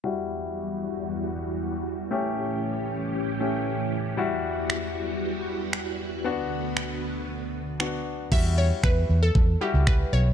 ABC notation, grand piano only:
X:1
M:4/4
L:1/16
Q:1/4=116
K:Edor
V:1 name="Grand piano"
[G,EF]16 | [A,CG]8- [A,CG]2 [A,CG]6 | [G,EF]16 | [B,DF]12 [B,DF]4 |
[G,EF]6 z4 [G,EF]4- [G,EF] z |]